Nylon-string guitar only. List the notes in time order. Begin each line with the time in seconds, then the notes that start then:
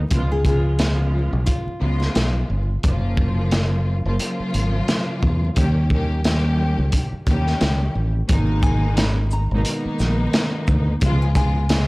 0.32 G#4
0.46 G#4
1.46 F4
2.00 F4
8.63 G#5
8.97 B5
9.33 A#5
11.22 G#5
11.36 G#5